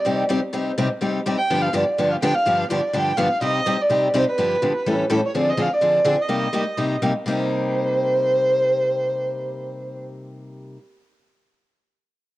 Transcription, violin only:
0.00 0.17 D5 medium
1.38 1.64 G5 loud
1.62 1.77 F5 loud
1.75 1.98 D5 medium
2.00 2.10 D5 medium
2.11 2.16 F5 medium
2.23 2.36 G5 loud
2.35 2.70 F5 loud
2.71 2.97 D5 medium
2.96 3.19 G5 medium
3.17 3.41 F5 loud
3.43 3.83 D#5 loud
3.82 4.04 D5 medium
4.16 4.27 C5 medium
4.29 5.07 B4 medium
5.26 5.34 C#5 medium
5.38 5.51 D5 medium
5.50 5.63 D#5 medium
5.62 5.73 F5 loud
5.74 6.23 D5 medium
6.22 7.03 D#5 medium
7.27 9.95 C5 medium

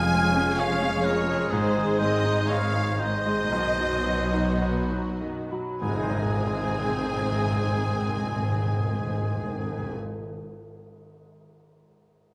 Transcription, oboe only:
0.00 0.61 F5 loud
0.60 1.06 C#5 loud
1.05 1.53 A#4 loud
1.51 1.98 G#4 medium
1.99 2.49 C5 medium
2.47 3.01 C#5 medium
2.99 5.21 C5 loud
5.82 9.95 G#4 medium

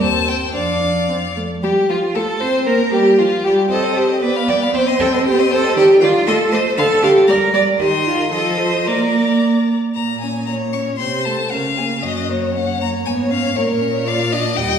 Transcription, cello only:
0.01 0.49 D#2 soft
0.56 1.04 F2 soft
1.10 1.57 F2 soft
1.63 1.91 G4 medium
1.90 2.17 F4 medium
2.15 2.42 A4 medium
2.41 2.68 C5 medium
2.66 2.92 A#4 medium
2.93 3.20 G4 medium
3.18 3.44 F4 medium
3.45 3.53 G4 medium
3.71 3.98 A4 medium
3.96 4.21 G4 medium
4.22 4.30 B4 medium
4.48 4.56 D5 medium
4.74 4.82 C5 medium
5.00 5.08 A4 medium
5.25 5.50 G4 medium
5.51 5.76 A4 loud
5.77 6.01 G4 medium
6.02 6.29 F4 medium
6.27 6.54 A4 medium
6.53 6.77 C5 loud
6.78 7.04 A4 loud
7.03 7.28 G4 loud
7.28 7.52 A#4 medium
7.53 7.61 D5 loud
7.80 7.88 G4 medium
8.06 8.32 F4 medium
8.32 8.60 A4 medium
8.59 8.88 C5 medium
8.86 9.41 A#4 medium
9.95 10.96 A#2 soft
11.00 11.51 C3 soft
11.52 12.04 C#3 soft
12.03 13.05 F#2 soft
13.06 13.58 G#2 soft
13.57 14.59 A#2 medium
14.58 14.79 D#2 medium

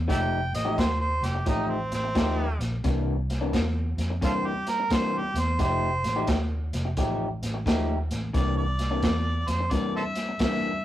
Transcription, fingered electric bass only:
0.09 0.50 F1 medium
0.53 0.75 A1 medium
0.78 1.19 D#2 medium
1.21 1.44 F1 medium
1.46 1.88 A1 medium
1.92 2.14 A1 medium
2.15 2.57 D#2 medium
2.59 2.82 A#1 medium
2.84 3.49 C2 medium
3.53 3.94 E2 medium
3.97 4.19 F2 medium
4.22 4.87 G2 medium
4.90 5.32 G2 medium
5.34 5.57 E2 medium
5.60 6.01 F1 medium
6.04 6.26 A1 medium
6.28 6.69 D#2 medium
6.73 6.95 F1 medium
6.97 7.38 A1 medium
7.42 7.64 A1 medium
7.66 8.07 D#2 medium
8.11 8.33 A1 medium
8.34 8.99 C2 loud
9.03 9.44 E2 medium
9.47 9.69 F2 medium
9.71 10.36 G2 medium
10.40 10.81 G2 medium

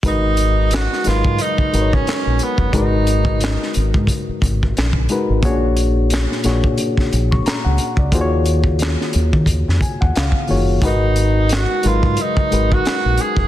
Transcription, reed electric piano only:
0.03 0.86 G#3 medium
0.03 0.86 D#4 medium
0.03 0.86 F#4 medium
0.03 0.87 A#4 medium
0.03 0.87 B4 medium
1.04 1.60 F#3 medium
1.04 1.60 G#3 medium
1.04 1.60 D#4 medium
1.04 1.61 A#4 medium
1.04 1.61 B4 medium
1.72 2.54 G#3 medium
1.72 2.55 D#4 medium
1.72 2.55 F#4 medium
1.72 2.56 A#4 medium
1.72 1.81 B4 medium
1.81 2.59 C#5 medium
2.73 3.82 G#3 medium
2.73 3.82 D#4 medium
2.73 3.82 F#4 medium
2.73 3.83 A#4 medium
2.73 3.83 B4 medium
5.10 5.37 G#3 medium
5.10 5.37 D#4 medium
5.10 5.38 F#4 medium
5.10 5.38 A#4 medium
5.10 5.38 B4 medium
5.43 6.25 A#2 loud
5.43 6.25 A#3 medium
5.43 5.51 C#4 medium
5.43 6.26 F#4 medium
5.43 6.26 G#4 medium
5.43 6.26 C#5 loud
5.50 6.29 D4 medium
6.44 6.99 A#2 medium
6.44 7.00 A#3 medium
6.44 7.00 D4 medium
6.44 7.00 F#4 medium
6.44 7.00 G#4 medium
6.44 7.01 C#5 medium
7.32 7.45 C#6 medium
7.46 7.64 A#5 medium
7.65 7.96 F#5 medium
7.99 8.30 D5 medium
8.12 9.21 D#3 loud
8.12 9.21 A#3 medium
8.12 9.21 F4 medium
8.12 9.21 F#4 medium
8.12 9.22 G#4 medium
8.12 8.21 C5 medium
8.21 9.25 C#5 loud
9.82 9.99 G#5 medium
10.01 10.14 F#5 medium
10.16 10.79 F5 medium
10.48 10.76 D#3 medium
10.48 10.76 A#3 medium
10.48 10.77 F4 medium
10.48 10.77 F#4 medium
10.48 10.77 G#4 medium
10.48 10.77 C#5 medium
10.82 11.64 G#3 medium
10.82 11.65 D#4 medium
10.82 11.65 F#4 medium
10.82 11.65 A#4 medium
10.82 11.66 B4 medium
11.84 12.39 F#3 medium
11.84 12.39 G#3 medium
11.84 12.39 D#4 medium
11.84 12.40 A#4 medium
11.84 12.40 B4 medium
12.51 13.33 G#3 medium
12.51 13.33 D#4 medium
12.51 13.34 F#4 medium
12.51 13.34 A#4 medium
12.51 13.34 B4 medium

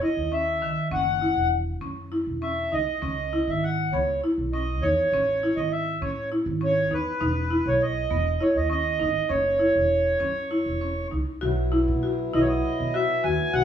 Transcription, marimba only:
0.02 0.21 E4 medium
0.32 0.51 C#4 medium
0.62 0.82 D#3 medium
0.91 1.11 C#4 medium
1.21 1.61 E4 medium
1.81 2.01 C#4 medium
2.12 2.32 E4 medium
2.42 2.62 C#4 medium
2.72 2.92 D#4 medium
3.02 3.22 C#4 medium
3.33 3.72 E4 medium
3.93 4.13 B3 medium
4.24 4.43 E4 medium
4.53 4.73 C#4 medium
4.83 5.03 D#4 medium
5.13 5.33 C#4 medium
5.43 5.82 E4 medium
6.02 6.21 C#4 medium
6.32 6.51 E4 medium
6.61 6.81 C#4 medium
6.91 7.11 D#4 medium
7.21 7.40 D#4 medium
7.50 7.90 E4 medium
8.11 8.30 B3 medium
8.41 8.60 E4 medium
8.70 8.89 C#4 medium
9.00 9.19 D#4 medium
9.29 9.49 C#4 medium
9.59 9.99 E4 medium
10.20 10.40 C#4 medium
10.51 10.71 E4 medium
10.81 11.01 C#4 medium
11.11 11.31 D#4 medium
11.41 11.61 F#4 medium
11.72 11.92 E4 medium
12.03 12.23 F#4 medium
12.33 12.73 E4 medium
12.94 13.14 F#4 medium
13.24 13.43 F#4 medium
13.54 13.64 F#4 medium

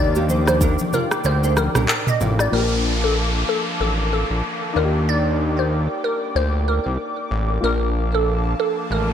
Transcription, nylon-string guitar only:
0.16 0.26 A#3 medium
0.16 0.25 G4 medium
0.30 0.43 D#4 medium
0.30 0.42 C5 medium
0.61 0.75 D4 medium
0.61 0.74 A#4 medium
0.94 1.07 F4 medium
0.94 1.06 D5 medium
1.44 1.54 D#4 medium
1.44 1.53 C5 medium
1.76 1.86 D4 medium
1.76 1.85 A#4 medium
2.21 2.34 F4 medium
2.21 2.34 D5 medium

